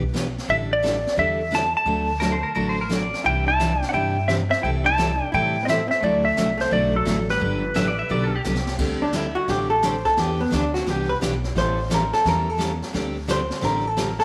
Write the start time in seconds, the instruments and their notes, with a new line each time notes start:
Already playing: upright bass B1
0.03 kick
0.14 steel-string acoustic guitar E3 B3 D4 G4, snare, hi-hat pedal
0.38 snare
0.48 upright bass A1, steel-string acoustic guitar D3 G3 D4 E4 A4, electric slide guitar E5, brush sweep
0.73 electric slide guitar D5
0.83 steel-string acoustic guitar D3 G3 D4 E4 A4, snare, hi-hat pedal
1.07 snare
1.17 upright bass E2, steel-string acoustic guitar D3 G3 D4 E4 A4, electric slide guitar E5, brush sweep
1.51 steel-string acoustic guitar D3 G3 D4 E4 A4, electric slide guitar A5, snare, hi-hat pedal
1.77 electric slide guitar A5
1.86 upright bass D2, steel-string acoustic guitar D3 F#3 A3 D4 F#4, brush sweep
2.20 steel-string acoustic guitar D3 F#3 A3 D4 F#4, pedal steel guitar A#4, snare, hi-hat pedal
2.32 pedal steel guitar C5
2.43 pedal steel guitar A#4
2.55 upright bass A1, steel-string acoustic guitar D3 F#3 A3 D4 F#4, pedal steel guitar A#4, brush sweep
2.69 pedal steel guitar C5
2.81 pedal steel guitar A#4
2.89 steel-string acoustic guitar D3 F#3 A3 D4 F#4, pedal steel guitar D5, snare, hi-hat pedal
3.14 snare
3.24 upright bass C2, steel-string acoustic guitar C3 E3 D4 G4, hollow-body jazz guitar E4, electric slide guitar G5, brush sweep
3.47 hollow-body jazz guitar E4, electric slide guitar A5
3.60 steel-string acoustic guitar C3 E3 D4 G4, snare, hi-hat pedal
3.82 snare
3.89 hollow-body jazz guitar D4, electric slide guitar F#5
3.93 upright bass G2, steel-string acoustic guitar C3 E3 D4 G4, hollow-body jazz guitar E4, electric slide guitar G5, brush sweep
4.28 steel-string acoustic guitar C3 E3 D4 G4, hollow-body jazz guitar C4, electric slide guitar E5, snare, hi-hat pedal
4.50 hollow-body jazz guitar C4, electric slide guitar E5, snare
4.62 upright bass C2, steel-string acoustic guitar C3 E3 G3 C4 E4 A4, hollow-body jazz guitar E4, electric slide guitar G5, brush sweep
4.85 hollow-body jazz guitar E4, electric slide guitar A5
4.98 steel-string acoustic guitar C3 E3 G3 C4 E4 A4, snare, hi-hat pedal
5.32 upright bass A2, steel-string acoustic guitar C3 E3 G3 C4 E4 A4, hollow-body jazz guitar E4, electric slide guitar G5, brush sweep
5.63 hollow-body jazz guitar B3 C4, electric slide guitar D#5
5.68 steel-string acoustic guitar C3 E3 G3 C4 E4 A4, electric slide guitar E5, snare, hi-hat pedal
5.88 hollow-body jazz guitar C4, electric slide guitar E5, snare
6.01 upright bass D2, steel-string acoustic guitar D3 F#3 A3 E4 F#4, hollow-body jazz guitar A3, electric slide guitar D5, brush sweep
6.24 hollow-body jazz guitar A3, electric slide guitar E5
6.37 upright bass C2, steel-string acoustic guitar D3 F#3 A3 E4 F#4, snare, hi-hat pedal
6.58 hollow-body jazz guitar A3, electric slide guitar C5, snare
6.71 upright bass B1, steel-string acoustic guitar D3 F#3 A3 E4 F#4, hollow-body jazz guitar A3, electric slide guitar D5, brush sweep
6.94 hollow-body jazz guitar F#3, electric slide guitar A4
7.05 upright bass A1, steel-string acoustic guitar D3 F#3 A3 E4 F#4, snare, hi-hat pedal
7.29 hollow-body jazz guitar G3, electric slide guitar B4, snare
7.40 upright bass G1, steel-string acoustic guitar D3 F#3 B3 D4 G4, brush sweep
7.74 upright bass A1, steel-string acoustic guitar D3 F#3 B3 D4 G4, pedal steel guitar E5, snare, hi-hat pedal
7.88 pedal steel guitar D5
7.99 pedal steel guitar E5
8.09 upright bass B1, steel-string acoustic guitar D3 F#3 B3 D4 G4, pedal steel guitar D5, brush sweep
8.24 pedal steel guitar A4
8.35 pedal steel guitar G4
8.44 upright bass C2, steel-string acoustic guitar D3 F#3 B3 D4 G4, pedal steel guitar G4, snare, hi-hat pedal
8.55 snare
8.67 snare
8.78 upright bass D2, steel-string acoustic guitar D3 G3 C4 D4 G4, brush sweep, kick, snare, crash
9.02 hollow-body jazz guitar D4
9.13 steel-string acoustic guitar D3 G3 C4 D4 G4, hollow-body jazz guitar E4, snare, hi-hat pedal
9.35 hollow-body jazz guitar F#4
9.48 upright bass A1, steel-string acoustic guitar D3 G3 C4 D4 G4, hollow-body jazz guitar G4, brush sweep, snare
9.70 hollow-body jazz guitar A4
9.82 steel-string acoustic guitar D3 G3 C4 D4 G4, hollow-body jazz guitar C5, snare, hi-hat pedal
10.05 hollow-body jazz guitar A4, kick, snare
10.17 upright bass E2, steel-string acoustic guitar E3 B3 D4 G4, hollow-body jazz guitar G4, brush sweep, snare
10.41 hollow-body jazz guitar B3
10.51 upright bass D2, steel-string acoustic guitar E3 B3 D4 G4, hollow-body jazz guitar D4, snare, hi-hat pedal
10.74 hollow-body jazz guitar F#4, snare
10.86 upright bass C2, steel-string acoustic guitar E3 B3 D4 G4, hollow-body jazz guitar G4, brush sweep, snare
11.09 hollow-body jazz guitar B4
11.21 upright bass B1, steel-string acoustic guitar E3 B3 D4 G4, snare, hi-hat pedal
11.44 snare
11.55 upright bass A1, steel-string acoustic guitar E3 G3 C#4 E4 A4, hollow-body jazz guitar C5, brush sweep, snare
11.90 steel-string acoustic guitar E3 G3 C#4 E4 A4, snare, hi-hat pedal
11.94 hollow-body jazz guitar A#4
12.13 hollow-body jazz guitar A4, snare
12.25 upright bass E2, steel-string acoustic guitar E3 G3 C#4 E4 A4, hollow-body jazz guitar A#4, brush sweep, snare
12.50 hollow-body jazz guitar A4
12.58 steel-string acoustic guitar E3 G3 C#4 E4 A4, snare, hi-hat pedal
12.82 snare
12.93 upright bass D2, steel-string acoustic guitar D3 G3 C4 D4 G4, brush sweep, snare
13.28 steel-string acoustic guitar D3 G3 C4 D4 G4, hollow-body jazz guitar C5, snare, hi-hat pedal
13.51 snare
13.61 upright bass A1, steel-string acoustic guitar D3 G3 C4 D4 G4, hollow-body jazz guitar A#4, brush sweep, snare
13.87 hollow-body jazz guitar A4
13.97 steel-string acoustic guitar D3 G3 C4 D4 G4, hollow-body jazz guitar A#4, snare, hi-hat pedal
14.20 hollow-body jazz guitar A4, snare